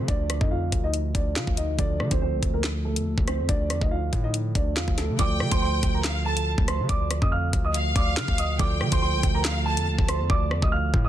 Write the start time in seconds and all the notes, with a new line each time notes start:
Already playing: D3 F3 A3 F4 A4
0.08 D2 D4 D5, kick, closed hi-hat
0.30 cross-stick, closed hi-hat
0.41 F2 D#4 D#5, kick
0.51 F4 F5
0.72 D2, kick, closed hi-hat
0.84 D#4 D#5
0.94 closed hi-hat
1.15 D2 D4 D5, kick, closed hi-hat
1.36 D3 F4 F5, snare, clap, closed hi-hat
1.47 D2, kick
1.57 D#4 D#5, closed hi-hat
1.77 D2 D3 F3 A3 D4 F4 A4 D5, kick, closed hi-hat
2.00 D3, cross-stick
2.11 D2 C4 C5, kick, closed hi-hat
2.21 C4 C5
2.33 C2
2.43 D2, kick, closed hi-hat
2.54 A#3 A#4
2.64 snare, clap, closed hi-hat
2.85 A3 A4
2.96 F2, closed hi-hat
3.06 D2
3.18 D2, kick
3.27 C4 C5, cross-stick, closed hi-hat
3.39 F2
3.49 D2 D4 D5, kick, closed hi-hat
3.70 F2, cross-stick, closed hi-hat
3.81 D2 D#4 D#5, kick
3.91 F4 F5
4.13 A2, kick, closed hi-hat
4.24 D#4 D#5
4.34 closed hi-hat
4.55 D2 D4 D5, kick, closed hi-hat
4.76 F2 F4 F5, snare, clap, closed hi-hat
4.88 D2, kick
4.98 A3 A4, snare, closed hi-hat
5.09 D3
5.17 D2 D3 F3 A3 F4 A4 D5 G5 D6, kick, closed hi-hat
5.40 D3, cross-stick
5.51 D2 C5 C6, kick, closed hi-hat
5.62 C5 C6
5.83 D2, kick, closed hi-hat
5.94 A#4 A#5
6.04 F5, snare, clap, closed hi-hat
6.25 A4 A5
6.37 closed hi-hat
6.58 D2, kick
6.68 C5 C6, cross-stick, closed hi-hat
6.79 D3
6.89 D2 D5 D6, kick, closed hi-hat
7.11 cross-stick, closed hi-hat
7.22 F2 D#5 D#6, kick
7.32 F5 F6
7.53 D2, kick, closed hi-hat
7.65 D#5 D#6
7.74 F5, closed hi-hat
7.96 D2 D5 D6, kick, closed hi-hat
8.17 D3 F5 F6, snare, clap, closed hi-hat
8.28 D2, kick
8.38 D#5 D#6, closed hi-hat
8.58 D2 D3 F3 A3 F4 A4 D5 G5 D6, kick, closed hi-hat
8.81 D3, cross-stick
8.92 D2 C5 C6, kick, closed hi-hat
9.02 C5 C6
9.13 C2
9.23 D2, kick, closed hi-hat
9.35 A#4 A#5
9.45 F5, snare, clap, closed hi-hat
9.66 A4 A5
9.77 F2, closed hi-hat
9.87 D2
9.99 D2, kick
10.08 C5 C6, cross-stick, closed hi-hat
10.20 F2
10.30 D2 D5 D6, kick
10.51 F2, cross-stick
10.62 D2 D#5 D#6, kick
10.72 F5 F6
10.94 A2, kick
11.05 D#5 D#6